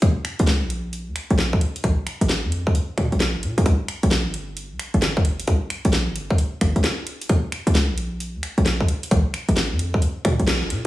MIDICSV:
0, 0, Header, 1, 3, 480
1, 0, Start_track
1, 0, Tempo, 454545
1, 22, Time_signature, 4, 2, 24, 8
1, 11477, End_track
2, 0, Start_track
2, 0, Title_t, "808-style bass"
2, 0, Program_c, 0, 38
2, 22, Note_on_c, 0, 39, 102
2, 148, Note_off_c, 0, 39, 0
2, 418, Note_on_c, 0, 37, 100
2, 658, Note_on_c, 0, 34, 94
2, 674, Note_off_c, 0, 37, 0
2, 1136, Note_on_c, 0, 39, 97
2, 1152, Note_off_c, 0, 34, 0
2, 1206, Note_off_c, 0, 39, 0
2, 1379, Note_on_c, 0, 34, 88
2, 1678, Note_off_c, 0, 34, 0
2, 1942, Note_on_c, 0, 34, 98
2, 2068, Note_off_c, 0, 34, 0
2, 2336, Note_on_c, 0, 32, 98
2, 2577, Note_on_c, 0, 41, 94
2, 2593, Note_off_c, 0, 32, 0
2, 3011, Note_off_c, 0, 41, 0
2, 3142, Note_on_c, 0, 46, 99
2, 3269, Note_off_c, 0, 46, 0
2, 3298, Note_on_c, 0, 34, 89
2, 3537, Note_on_c, 0, 29, 86
2, 3553, Note_off_c, 0, 34, 0
2, 3621, Note_on_c, 0, 46, 92
2, 3637, Note_off_c, 0, 29, 0
2, 3748, Note_off_c, 0, 46, 0
2, 3777, Note_on_c, 0, 39, 94
2, 3846, Note_off_c, 0, 39, 0
2, 3863, Note_on_c, 0, 36, 97
2, 3989, Note_off_c, 0, 36, 0
2, 4259, Note_on_c, 0, 34, 100
2, 4498, Note_on_c, 0, 31, 96
2, 4514, Note_off_c, 0, 34, 0
2, 4979, Note_on_c, 0, 36, 97
2, 4995, Note_off_c, 0, 31, 0
2, 5047, Note_off_c, 0, 36, 0
2, 5219, Note_on_c, 0, 31, 85
2, 5758, Note_off_c, 0, 31, 0
2, 5783, Note_on_c, 0, 36, 97
2, 5909, Note_off_c, 0, 36, 0
2, 6178, Note_on_c, 0, 34, 101
2, 6418, Note_on_c, 0, 31, 94
2, 6434, Note_off_c, 0, 34, 0
2, 6852, Note_off_c, 0, 31, 0
2, 6983, Note_on_c, 0, 31, 99
2, 7109, Note_off_c, 0, 31, 0
2, 7137, Note_on_c, 0, 36, 89
2, 7206, Note_off_c, 0, 36, 0
2, 7703, Note_on_c, 0, 39, 101
2, 7829, Note_off_c, 0, 39, 0
2, 8097, Note_on_c, 0, 37, 99
2, 8338, Note_on_c, 0, 34, 97
2, 8354, Note_off_c, 0, 37, 0
2, 8817, Note_on_c, 0, 39, 99
2, 8832, Note_off_c, 0, 34, 0
2, 8886, Note_off_c, 0, 39, 0
2, 9057, Note_on_c, 0, 34, 86
2, 9357, Note_off_c, 0, 34, 0
2, 9624, Note_on_c, 0, 34, 98
2, 9750, Note_off_c, 0, 34, 0
2, 10017, Note_on_c, 0, 32, 99
2, 10257, Note_on_c, 0, 41, 95
2, 10273, Note_off_c, 0, 32, 0
2, 10691, Note_off_c, 0, 41, 0
2, 10822, Note_on_c, 0, 46, 100
2, 10949, Note_off_c, 0, 46, 0
2, 10978, Note_on_c, 0, 34, 88
2, 11217, Note_on_c, 0, 29, 87
2, 11233, Note_off_c, 0, 34, 0
2, 11301, Note_on_c, 0, 46, 91
2, 11317, Note_off_c, 0, 29, 0
2, 11428, Note_off_c, 0, 46, 0
2, 11477, End_track
3, 0, Start_track
3, 0, Title_t, "Drums"
3, 21, Note_on_c, 9, 42, 62
3, 22, Note_on_c, 9, 36, 123
3, 127, Note_off_c, 9, 36, 0
3, 127, Note_off_c, 9, 42, 0
3, 261, Note_on_c, 9, 26, 68
3, 261, Note_on_c, 9, 42, 103
3, 367, Note_off_c, 9, 26, 0
3, 367, Note_off_c, 9, 42, 0
3, 415, Note_on_c, 9, 42, 60
3, 500, Note_off_c, 9, 42, 0
3, 500, Note_on_c, 9, 38, 126
3, 500, Note_on_c, 9, 42, 65
3, 606, Note_off_c, 9, 38, 0
3, 606, Note_off_c, 9, 42, 0
3, 740, Note_on_c, 9, 42, 87
3, 846, Note_off_c, 9, 42, 0
3, 981, Note_on_c, 9, 42, 65
3, 1086, Note_off_c, 9, 42, 0
3, 1222, Note_on_c, 9, 26, 58
3, 1222, Note_on_c, 9, 42, 97
3, 1327, Note_off_c, 9, 26, 0
3, 1327, Note_off_c, 9, 42, 0
3, 1378, Note_on_c, 9, 42, 34
3, 1463, Note_off_c, 9, 42, 0
3, 1463, Note_on_c, 9, 38, 121
3, 1463, Note_on_c, 9, 42, 60
3, 1569, Note_off_c, 9, 38, 0
3, 1569, Note_off_c, 9, 42, 0
3, 1617, Note_on_c, 9, 36, 112
3, 1702, Note_on_c, 9, 42, 90
3, 1723, Note_off_c, 9, 36, 0
3, 1808, Note_off_c, 9, 42, 0
3, 1858, Note_on_c, 9, 42, 62
3, 1942, Note_off_c, 9, 42, 0
3, 1942, Note_on_c, 9, 36, 120
3, 1942, Note_on_c, 9, 42, 63
3, 2047, Note_off_c, 9, 36, 0
3, 2047, Note_off_c, 9, 42, 0
3, 2182, Note_on_c, 9, 26, 68
3, 2182, Note_on_c, 9, 42, 102
3, 2287, Note_off_c, 9, 26, 0
3, 2287, Note_off_c, 9, 42, 0
3, 2338, Note_on_c, 9, 42, 61
3, 2422, Note_off_c, 9, 42, 0
3, 2422, Note_on_c, 9, 38, 122
3, 2422, Note_on_c, 9, 42, 66
3, 2528, Note_off_c, 9, 38, 0
3, 2528, Note_off_c, 9, 42, 0
3, 2662, Note_on_c, 9, 42, 86
3, 2767, Note_off_c, 9, 42, 0
3, 2817, Note_on_c, 9, 36, 111
3, 2903, Note_on_c, 9, 42, 62
3, 2923, Note_off_c, 9, 36, 0
3, 3008, Note_off_c, 9, 42, 0
3, 3142, Note_on_c, 9, 36, 63
3, 3143, Note_on_c, 9, 26, 54
3, 3143, Note_on_c, 9, 42, 96
3, 3248, Note_off_c, 9, 26, 0
3, 3248, Note_off_c, 9, 36, 0
3, 3248, Note_off_c, 9, 42, 0
3, 3297, Note_on_c, 9, 42, 36
3, 3382, Note_off_c, 9, 42, 0
3, 3382, Note_on_c, 9, 38, 120
3, 3382, Note_on_c, 9, 42, 60
3, 3487, Note_off_c, 9, 38, 0
3, 3487, Note_off_c, 9, 42, 0
3, 3622, Note_on_c, 9, 42, 87
3, 3727, Note_off_c, 9, 42, 0
3, 3778, Note_on_c, 9, 42, 65
3, 3863, Note_off_c, 9, 42, 0
3, 3863, Note_on_c, 9, 36, 119
3, 3863, Note_on_c, 9, 42, 66
3, 3968, Note_off_c, 9, 36, 0
3, 3969, Note_off_c, 9, 42, 0
3, 4102, Note_on_c, 9, 26, 65
3, 4102, Note_on_c, 9, 42, 103
3, 4207, Note_off_c, 9, 26, 0
3, 4207, Note_off_c, 9, 42, 0
3, 4258, Note_on_c, 9, 42, 65
3, 4342, Note_off_c, 9, 42, 0
3, 4342, Note_on_c, 9, 38, 123
3, 4342, Note_on_c, 9, 42, 65
3, 4447, Note_off_c, 9, 38, 0
3, 4447, Note_off_c, 9, 42, 0
3, 4581, Note_on_c, 9, 42, 82
3, 4687, Note_off_c, 9, 42, 0
3, 4822, Note_on_c, 9, 42, 66
3, 4928, Note_off_c, 9, 42, 0
3, 5063, Note_on_c, 9, 26, 53
3, 5063, Note_on_c, 9, 42, 99
3, 5169, Note_off_c, 9, 26, 0
3, 5169, Note_off_c, 9, 42, 0
3, 5217, Note_on_c, 9, 42, 35
3, 5301, Note_off_c, 9, 42, 0
3, 5301, Note_on_c, 9, 38, 112
3, 5301, Note_on_c, 9, 42, 64
3, 5407, Note_off_c, 9, 38, 0
3, 5407, Note_off_c, 9, 42, 0
3, 5458, Note_on_c, 9, 36, 101
3, 5542, Note_on_c, 9, 42, 90
3, 5563, Note_off_c, 9, 36, 0
3, 5648, Note_off_c, 9, 42, 0
3, 5697, Note_on_c, 9, 42, 66
3, 5781, Note_off_c, 9, 42, 0
3, 5781, Note_on_c, 9, 42, 66
3, 5783, Note_on_c, 9, 36, 116
3, 5886, Note_off_c, 9, 42, 0
3, 5888, Note_off_c, 9, 36, 0
3, 6022, Note_on_c, 9, 26, 65
3, 6022, Note_on_c, 9, 42, 110
3, 6128, Note_off_c, 9, 26, 0
3, 6128, Note_off_c, 9, 42, 0
3, 6176, Note_on_c, 9, 42, 70
3, 6260, Note_off_c, 9, 42, 0
3, 6260, Note_on_c, 9, 38, 114
3, 6260, Note_on_c, 9, 42, 68
3, 6365, Note_off_c, 9, 38, 0
3, 6365, Note_off_c, 9, 42, 0
3, 6501, Note_on_c, 9, 42, 92
3, 6606, Note_off_c, 9, 42, 0
3, 6658, Note_on_c, 9, 36, 102
3, 6741, Note_on_c, 9, 42, 70
3, 6763, Note_off_c, 9, 36, 0
3, 6846, Note_off_c, 9, 42, 0
3, 6982, Note_on_c, 9, 26, 53
3, 6982, Note_on_c, 9, 36, 59
3, 6982, Note_on_c, 9, 42, 102
3, 7088, Note_off_c, 9, 26, 0
3, 7088, Note_off_c, 9, 36, 0
3, 7088, Note_off_c, 9, 42, 0
3, 7138, Note_on_c, 9, 42, 36
3, 7221, Note_off_c, 9, 42, 0
3, 7221, Note_on_c, 9, 38, 116
3, 7221, Note_on_c, 9, 42, 68
3, 7327, Note_off_c, 9, 38, 0
3, 7327, Note_off_c, 9, 42, 0
3, 7462, Note_on_c, 9, 42, 91
3, 7568, Note_off_c, 9, 42, 0
3, 7619, Note_on_c, 9, 42, 69
3, 7702, Note_off_c, 9, 42, 0
3, 7702, Note_on_c, 9, 42, 65
3, 7703, Note_on_c, 9, 36, 110
3, 7808, Note_off_c, 9, 36, 0
3, 7808, Note_off_c, 9, 42, 0
3, 7944, Note_on_c, 9, 26, 67
3, 7944, Note_on_c, 9, 42, 105
3, 8049, Note_off_c, 9, 26, 0
3, 8049, Note_off_c, 9, 42, 0
3, 8099, Note_on_c, 9, 42, 70
3, 8183, Note_off_c, 9, 42, 0
3, 8183, Note_on_c, 9, 38, 112
3, 8183, Note_on_c, 9, 42, 69
3, 8289, Note_off_c, 9, 38, 0
3, 8289, Note_off_c, 9, 42, 0
3, 8422, Note_on_c, 9, 42, 90
3, 8528, Note_off_c, 9, 42, 0
3, 8663, Note_on_c, 9, 42, 72
3, 8768, Note_off_c, 9, 42, 0
3, 8902, Note_on_c, 9, 26, 54
3, 8902, Note_on_c, 9, 42, 104
3, 9008, Note_off_c, 9, 26, 0
3, 9008, Note_off_c, 9, 42, 0
3, 9058, Note_on_c, 9, 42, 37
3, 9142, Note_off_c, 9, 42, 0
3, 9142, Note_on_c, 9, 38, 109
3, 9142, Note_on_c, 9, 42, 67
3, 9247, Note_off_c, 9, 38, 0
3, 9247, Note_off_c, 9, 42, 0
3, 9298, Note_on_c, 9, 36, 100
3, 9382, Note_on_c, 9, 42, 94
3, 9404, Note_off_c, 9, 36, 0
3, 9488, Note_off_c, 9, 42, 0
3, 9538, Note_on_c, 9, 42, 70
3, 9623, Note_off_c, 9, 42, 0
3, 9623, Note_on_c, 9, 36, 115
3, 9623, Note_on_c, 9, 42, 68
3, 9728, Note_off_c, 9, 36, 0
3, 9729, Note_off_c, 9, 42, 0
3, 9862, Note_on_c, 9, 26, 70
3, 9862, Note_on_c, 9, 42, 115
3, 9967, Note_off_c, 9, 26, 0
3, 9967, Note_off_c, 9, 42, 0
3, 10017, Note_on_c, 9, 42, 65
3, 10101, Note_off_c, 9, 42, 0
3, 10101, Note_on_c, 9, 38, 121
3, 10101, Note_on_c, 9, 42, 70
3, 10207, Note_off_c, 9, 38, 0
3, 10207, Note_off_c, 9, 42, 0
3, 10341, Note_on_c, 9, 42, 96
3, 10447, Note_off_c, 9, 42, 0
3, 10498, Note_on_c, 9, 36, 100
3, 10581, Note_on_c, 9, 42, 67
3, 10603, Note_off_c, 9, 36, 0
3, 10687, Note_off_c, 9, 42, 0
3, 10822, Note_on_c, 9, 26, 55
3, 10822, Note_on_c, 9, 36, 60
3, 10822, Note_on_c, 9, 42, 109
3, 10928, Note_off_c, 9, 26, 0
3, 10928, Note_off_c, 9, 36, 0
3, 10928, Note_off_c, 9, 42, 0
3, 10977, Note_on_c, 9, 42, 37
3, 11061, Note_off_c, 9, 42, 0
3, 11061, Note_on_c, 9, 38, 113
3, 11061, Note_on_c, 9, 42, 66
3, 11167, Note_off_c, 9, 38, 0
3, 11167, Note_off_c, 9, 42, 0
3, 11302, Note_on_c, 9, 42, 97
3, 11407, Note_off_c, 9, 42, 0
3, 11477, End_track
0, 0, End_of_file